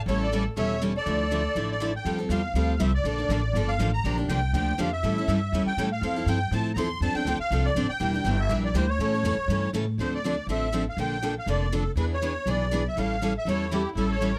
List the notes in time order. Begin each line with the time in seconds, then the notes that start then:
0.06 A1 E3 G3 C#4 E4 A4 C#5
0.20 A4 D5
0.33 E3 G3 C#4 E4 A4
0.57 E1 E3 G3 C#4 E4 A4 C#5 E5
0.82 E3 G3 C#4 E4 A4
0.96 A4 D5
1.06 D2 D3 F3 A3 E4 A4
1.31 D3 F3 A3 E4 A4
1.55 A1 D3 F3 A3 E4 A4
1.72 D5
1.80 D3 F3 A3 E4 A4
1.96 G5
2.05 F2 F3 G3 C4 F4 G4 A4
2.18 C4 F4 A4
2.29 E2 F3 G3 C4 F4 G4 A4 F5
2.54 D2 F3 G3 C4 F4 G4 A4 F5
2.80 C2 F3 G3 C4 F4 G4 A4 E5
2.95 D5
3.04 A#1 D3 F3 A#3 D4 A4
3.19 A#3 D4 A4
3.29 A1 D3 F3 A#3 D4 A4
3.53 G1 D3 F3 A#3 D4 A4
3.68 F5
3.79 A1 D3 F3 A#3 D4 A4
3.93 A#5
4.04 A#1 D3 F3 A#3 D4 G4
4.17 A#3 D4 G4
4.29 C2 D3 F3 A#3 D4 G4 G5
4.53 D2 D3 F3 A#3 D4 G4 G5
4.78 F2 D3 F3 A#3 D4 G4 F5
4.92 E5
5.03 A2 E3 G3 C#4 E4 A4
5.18 C#4 E4 A4
5.28 G2 E3 G3 C#4 E4 A4
5.52 E2 E3 G3 C#4 E4 A4
5.66 G5, muted upright bass stroke
5.77 A2 E3 G3 C#4 E4 A4
5.92 F5
6.01 F2 F3 C4 E4 A4
6.16 C4 E4 A4
6.26 G2 F3 C4 E4 A4 G5
6.51 A2 F3 C4 E4 A4 A5
6.74 E2 F3 C4 A#5
6.78 E4 A4 C6
7.01 F2 F3 C4 D4 A4 A5
7.14 C4 D4 A4 G5, muted upright bass stroke
7.25 D2 F3 C4 D4 A4
7.39 F5, muted upright bass stroke
7.50 C2 F3 C4 D4 A4
7.65 D5
7.75 A1 F3 C4 D4 A4
7.89 G5, muted upright bass stroke
8.00 E1 E3 G3 A#3 D4 E4 G4 A#4
8.14 A#3 D4 G4
8.24 G1 E3 G3 A#3 D4 E4 G4 A#4
8.40 E5
8.49 A#1 E3 G3 A#3 D4 E4 G4 A#4
8.65 D5
8.74 D2 E3 G3 A#3 D4 E4 G4 A#4 C5
8.89 C#5
8.99 A2 C#3 E3 A3 C#4 E4 A4
9.14 A3 C#4 A4
9.23 F2 C#3 E3 A3 C#4 E4 A4
9.37 muted upright bass stroke
9.48 G2 C#3 E3 A3 C#4 E4 A4
9.73 A2 C#3 E3 A3 C#4 E4 A4
9.98 D2 D3 F3 C4 D4 A4 C5
10.15 D5
10.25 D3 F3 C4 D4 A4
10.47 A1 D3 F3 C4 D4 A4
10.51 E5
10.72 D3 F3 C4 D4 A4
10.89 F5
10.97 A#1 D3 F3 A#3 D4 A4 G5
11.23 D3 F3 A#3 D4 A4
11.39 F5
11.46 F1 D3 F3 A#3 D4 A4 D5
11.72 D3 F3 A#3 D4 A4
11.96 E2 E3 B3 D4 G#4 B4
12.14 C#5
12.22 E3 B3 D4 G#4 B4
12.46 B1 E3 B3 D4 G#4 B4 D5
12.71 E3 B3 D4 G#4 B4
12.88 E5
12.96 A1 E3 G3 C#4 E4 A4 F5
13.22 E3 G3 C#4 E4 A4
13.38 E5
13.45 E2 E3 G3 C#4 E4 A4 C#5
13.49 A4
13.72 E3 G3 C#4 E4 G4 A4
13.95 A1 E3 G3 C#4 E4 A4
14.09 A4 C#5
14.21 E3 G3 C#4 E4 A4
14.35 A#4